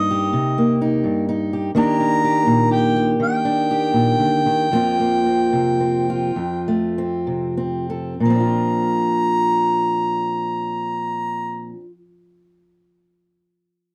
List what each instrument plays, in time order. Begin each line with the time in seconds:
Already playing: steel-string acoustic guitar G2 A#3 D#4, harmonica D#5
0.11 steel-string acoustic guitar G4
0.33 steel-string acoustic guitar C3
0.58 steel-string acoustic guitar A#3
0.81 steel-string acoustic guitar D#4
1.04 steel-string acoustic guitar G2
1.29 steel-string acoustic guitar D#4
1.53 steel-string acoustic guitar G4
1.75 steel-string acoustic guitar D#3 A#3 D4 G4, harmonica A#5
2.00 steel-string acoustic guitar D4
2.24 steel-string acoustic guitar G4
2.46 steel-string acoustic guitar A#2
2.71 steel-string acoustic guitar G4, harmonica G5
2.96 steel-string acoustic guitar G4
3.20 steel-string acoustic guitar D#3, harmonica G5
3.45 steel-string acoustic guitar D4
3.71 steel-string acoustic guitar G4
3.93 steel-string acoustic guitar A#2
4.19 steel-string acoustic guitar D3
4.46 steel-string acoustic guitar D#3
4.71 steel-string acoustic guitar F2 F3 A#3 C4 F4
5.00 steel-string acoustic guitar A#3
5.26 steel-string acoustic guitar C4
5.53 steel-string acoustic guitar C3
5.80 steel-string acoustic guitar C4
6.10 steel-string acoustic guitar F4
6.36 steel-string acoustic guitar F2
6.68 steel-string acoustic guitar A3
6.98 steel-string acoustic guitar C4
7.27 steel-string acoustic guitar C3
7.57 steel-string acoustic guitar C4
7.90 steel-string acoustic guitar A4
8.20 steel-string acoustic guitar A#2, harmonica A#5
8.25 steel-string acoustic guitar F3
8.30 steel-string acoustic guitar C4
8.35 steel-string acoustic guitar D4
8.40 steel-string acoustic guitar F4